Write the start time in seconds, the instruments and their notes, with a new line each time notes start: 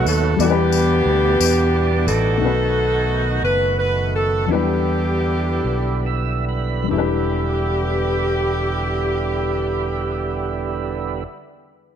Already playing: upright piano B2 A3 B3 D#4 F#4 B4, tonewheel organ D#3 F#3 A3 B3 F#4, saxophone section A3 D#4
0.05 fingered electric bass D#2, saxophone section A4, tambourine
0.36 fingered electric bass E2, tonewheel organ B2 G3 B3, upright piano E3 G3 B3 D5, tambourine
0.40 tonewheel organ E3 D4, saxophone section B3 D4 G4, upright piano A4
0.51 upright piano B4
0.72 tambourine
1.06 fingered electric bass D2
1.40 fingered electric bass E2, tambourine
1.76 tonewheel organ D5
2.07 fingered electric bass A1, saxophone section D#4 F#4 A4, tambourine
2.37 fingered electric bass B1, tonewheel organ D#3 B3 F#4, upright piano A3 D#4
2.41 upright piano B2 F#4 B4, tonewheel organ A3
3.42 fingered electric bass F#1, saxophone section B4
3.79 saxophone section B4
4.15 saxophone section A4
4.46 fingered electric bass E2, tonewheel organ D3 G3 B3 E4, upright piano E3 F#3 D4
4.51 upright piano G3 E4 B4, saxophone section B3 D4 G4
5.64 fingered electric bass B1
6.06 tonewheel organ E5
6.49 tonewheel organ B5
6.83 upright piano G3
6.88 fingered electric bass E1, upright piano E2 D4, tonewheel organ D3 G3 B3 E4
6.92 upright piano E4, saxophone section G4
6.98 upright piano B4